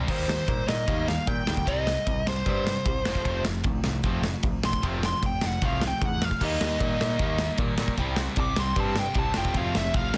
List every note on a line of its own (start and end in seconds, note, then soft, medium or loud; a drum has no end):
0.07 0.23 D#2 loud
0.07 0.27 D#3 medium
0.07 0.27 G3 medium
0.07 0.27 A#3 medium
0.07 0.28 A#3 medium
0.07 0.27 D#4 medium
0.07 0.67 C5 medium
0.07 kick loud
0.07 crash loud
0.28 0.43 D#2 medium
0.28 0.46 D#3 medium
0.28 0.47 D#3 medium
0.28 0.47 G3 medium
0.28 0.47 A#3 medium
0.28 snare loud
0.48 0.63 A#2 medium
0.48 0.66 D#3 medium
0.48 0.66 G3 medium
0.48 0.66 A#3 medium
0.48 kick loud
0.48 ride medium
0.68 0.83 A#2 medium
0.68 0.86 D#3 medium
0.68 0.86 G3 medium
0.68 0.86 A#3 medium
0.68 1.07 D#5 medium
0.68 snare loud
0.87 1.17 D#2 medium
0.87 1.06 D#3 medium
0.87 1.07 D#3 medium
0.87 1.06 G3 loud
0.87 1.07 A#3 loud
0.87 1.07 A#3 medium
0.87 1.07 D#4 loud
0.87 kick loud
0.87 ride medium
1.07 1.26 D#3 medium
1.07 1.26 G3 medium
1.07 1.27 A#3 medium
1.07 1.27 F5 medium
1.07 snare medium
1.27 1.42 A#2 medium
1.27 1.45 D#3 medium
1.27 1.46 D#3 medium
1.27 1.46 G3 medium
1.27 1.47 A#3 medium
1.27 1.66 G5 loud
1.27 kick loud
1.27 ride medium
1.47 1.63 D2 medium
1.47 1.65 D#3 medium
1.47 1.65 G3 medium
1.47 1.66 A#3 medium
1.47 snare loud
1.57 kick medium
1.65 1.96 C2 medium
1.65 1.85 C3 medium
1.65 1.86 C3 medium
1.65 1.85 G3 medium
1.65 1.86 G3 loud
1.65 1.85 C4 medium
1.65 1.86 C4 loud
1.65 2.25 D#5 loud
1.65 kick medium
1.65 ride medium
1.87 2.05 C3 medium
1.87 2.05 G3 medium
1.87 snare loud
2.07 2.22 C2 medium
2.07 2.25 C3 medium
2.07 2.25 G3 medium
2.07 kick loud
2.07 ride medium
2.26 2.41 C2 medium
2.26 2.44 C3 medium
2.26 2.44 G3 medium
2.26 2.45 G3 medium
2.26 3.42 C5 loud
2.26 snare loud
2.46 2.76 G2 medium
2.46 2.64 C3 medium
2.46 2.65 C3 loud
2.46 2.65 G3 medium
2.46 2.66 C4 medium
2.46 2.66 C4 loud
2.46 kick loud
2.46 ride medium
2.65 2.84 C3 medium
2.65 2.84 G3 medium
2.65 snare loud
2.86 3.00 C2 medium
2.86 3.04 C3 medium
2.86 3.04 G3 medium
2.86 3.04 G3 loud
2.86 kick loud
2.86 ride medium
3.05 3.20 F1 medium
3.05 3.24 F2 medium
3.05 3.25 C3 loud
3.05 3.24 F3 medium
3.05 3.25 F3 loud
3.05 3.25 A3 medium
3.05 3.25 C4 medium
3.05 snare loud
3.15 kick medium
3.25 3.40 F1 loud
3.25 3.45 F2 medium
3.25 3.45 C3 loud
3.25 3.44 F3 medium
3.25 3.45 F3 medium
3.25 3.44 A3 medium
3.25 3.44 C4 medium
3.25 kick loud
3.25 ride medium
3.45 3.60 F1 medium
3.45 3.63 F2 medium
3.45 3.64 C3 medium
3.45 3.63 F3 medium
3.45 3.63 A3 medium
3.45 snare loud
3.64 3.79 C2 medium
3.64 3.84 F2 medium
3.64 3.84 C3 medium
3.64 3.82 F3 medium
3.64 3.82 A3 medium
3.64 kick loud
3.64 ride medium
3.84 3.99 C2 medium
3.84 4.03 F2 medium
3.84 4.03 C3 medium
3.84 4.02 F3 medium
3.84 4.02 A3 medium
3.84 snare medium
4.03 4.34 F1 medium
4.03 4.23 F2 medium
4.03 4.23 C3 medium
4.03 4.23 F3 loud
4.03 4.24 F3 medium
4.03 4.23 A3 loud
4.03 4.24 C4 loud
4.03 kick loud
4.03 ride medium
4.24 4.42 F2 medium
4.24 4.42 C3 medium
4.24 4.42 F3 medium
4.24 4.42 A3 medium
4.24 snare medium
4.43 4.58 C2 medium
4.43 4.61 F2 medium
4.43 4.62 C3 medium
4.43 4.62 F3 medium
4.43 4.62 A3 medium
4.43 kick loud
4.43 ride medium
4.63 4.78 C2 medium
4.63 4.81 F2 medium
4.63 4.81 C3 medium
4.63 4.81 F3 medium
4.63 4.82 A3 medium
4.63 4.84 C6 loud
4.63 snare loud
4.73 kick medium
4.82 5.12 F1 loud
4.82 5.01 F2 medium
4.82 5.02 C3 medium
4.82 5.01 F3 medium
4.82 5.02 F3 medium
4.82 5.02 A3 medium
4.82 5.02 C4 loud
4.82 kick medium
4.82 ride medium
5.03 5.21 F2 medium
5.03 5.21 C3 medium
5.03 5.21 F3 medium
5.03 5.21 A3 medium
5.03 5.24 C6 medium
5.03 snare medium
5.22 5.38 F1 medium
5.22 5.40 F2 medium
5.22 5.40 C3 medium
5.22 5.41 F3 medium
5.22 5.41 A3 medium
5.22 kick loud
5.22 ride medium
5.26 5.46 G5 medium
5.41 5.57 F1 loud
5.41 5.60 F2 medium
5.41 5.60 C3 medium
5.41 5.60 F3 medium
5.41 5.60 A3 medium
5.41 snare loud
5.46 5.65 F#5 medium
5.62 5.91 C2 medium
5.62 5.81 F2 medium
5.62 5.81 C3 medium
5.62 5.81 F3 medium
5.62 5.81 F3 loud
5.62 5.81 A3 loud
5.62 5.81 C4 loud
5.62 5.83 F5 loud
5.62 kick loud
5.62 ride medium
5.81 5.99 F2 medium
5.81 6.00 C3 medium
5.81 6.00 F3 medium
5.81 6.00 A3 medium
5.81 snare loud
5.87 6.05 G5 medium
6.02 6.31 E2 medium
6.02 6.20 F2 medium
6.02 6.20 C3 medium
6.02 6.20 F3 medium
6.02 6.20 A3 medium
6.02 6.25 F#5 medium
6.02 kick loud
6.02 ride medium
6.21 6.39 F2 medium
6.21 6.39 C3 medium
6.21 6.39 F3 medium
6.21 6.39 A3 medium
6.21 6.42 F5 medium
6.21 snare loud
6.31 kick medium
6.41 6.56 D#2 medium
6.41 6.60 D#3 medium
6.41 6.60 G3 medium
6.41 6.60 A#3 medium
6.41 6.60 A#3 loud
6.41 6.61 D#4 medium
6.41 7.57 D#5 medium
6.41 kick medium
6.41 crash loud
6.61 6.76 D#2 medium
6.61 6.79 D#3 medium
6.61 6.79 G3 medium
6.61 6.79 A#3 medium
6.61 snare loud
6.80 6.95 A#2 medium
6.80 6.99 D#3 medium
6.80 6.99 G3 medium
6.80 6.99 A#3 medium
6.80 7.00 D#4 medium
6.80 kick loud
6.80 ride medium
7.00 7.15 A#2 medium
7.00 7.18 D#3 medium
7.00 7.18 G3 medium
7.00 7.18 A#3 medium
7.00 7.19 D#4 medium
7.00 snare loud
7.19 7.49 D#2 medium
7.19 7.38 D#3 medium
7.19 7.39 D#3 medium
7.19 7.39 G3 loud
7.19 7.39 A#3 loud
7.19 7.39 A#3 medium
7.19 7.39 D#4 medium
7.19 kick loud
7.19 ride medium
7.38 7.57 D#3 medium
7.38 7.58 D#3 medium
7.38 7.58 G3 medium
7.38 7.58 A#3 medium
7.38 snare loud
7.57 7.74 A#2 medium
7.57 7.78 D#3 medium
7.57 7.78 G3 medium
7.57 7.78 A#3 medium
7.57 7.78 D#4 medium
7.57 kick loud
7.57 ride medium
7.78 7.94 A#2 medium
7.78 7.97 D#3 medium
7.78 7.97 G3 medium
7.78 7.97 A#3 medium
7.78 7.98 D#4 medium
7.78 snare loud
7.88 kick medium
7.97 8.27 C2 medium
7.97 8.17 C3 medium
7.97 8.17 G3 loud
7.97 8.18 G3 loud
7.97 8.18 C4 loud
7.97 kick medium
7.97 ride medium
8.16 8.36 C3 medium
8.16 8.36 G3 medium
8.16 snare loud
8.36 8.52 C2 loud
8.36 8.55 C3 medium
8.36 8.56 C3 medium
8.36 8.56 G3 medium
8.36 8.58 C4 medium
8.36 kick loud
8.36 ride medium
8.40 8.58 D6 medium
8.56 8.72 C2 loud
8.56 8.75 C3 medium
8.56 8.75 G3 medium
8.56 8.77 C4 loud
8.56 8.80 C6 medium
8.56 snare loud
8.76 9.06 G2 medium
8.76 8.95 C3 medium
8.76 8.96 G3 loud
8.76 8.96 G3 medium
8.76 8.96 C4 loud
8.76 8.98 A5 loud
8.76 kick loud
8.76 ride medium
8.96 9.14 C3 medium
8.96 9.15 C3 medium
8.96 9.15 G3 medium
8.96 9.17 G5 medium
8.96 snare loud
9.14 9.30 C2 loud
9.14 9.34 C3 medium
9.14 9.35 C3 medium
9.14 9.34 G3 loud
9.14 9.35 G3 medium
9.14 10.18 C4 medium
9.14 kick loud
9.14 ride medium
9.19 9.37 A5 loud
9.34 9.51 F1 loud
9.34 9.55 F2 loud
9.34 9.55 C3 loud
9.34 9.53 F3 medium
9.34 9.56 F3 loud
9.34 9.54 A3 medium
9.34 9.54 C4 loud
9.34 9.57 G5 loud
9.34 snare loud
9.45 kick medium
9.54 9.70 F1 loud
9.54 9.75 F2 medium
9.54 9.75 C3 loud
9.54 9.73 F3 loud
9.54 9.74 A3 loud
9.54 9.74 C4 loud
9.54 9.76 F5 medium
9.54 kick loud
9.54 ride medium
9.58 9.76 F3 medium
9.74 9.90 F1 loud
9.74 9.94 F2 medium
9.74 9.94 C3 medium
9.74 9.93 F3 medium
9.74 9.93 A3 medium
9.74 9.96 E5 loud
9.74 snare loud
9.94 10.09 C2 medium
9.94 10.13 F2 medium
9.94 10.13 C3 medium
9.94 10.13 F3 medium
9.94 10.13 A3 loud
9.94 10.15 F5 medium
9.94 kick loud
9.94 ride medium
10.14 10.18 F2 medium
10.14 10.18 F3 medium
10.14 10.18 A3 medium
10.14 snare loud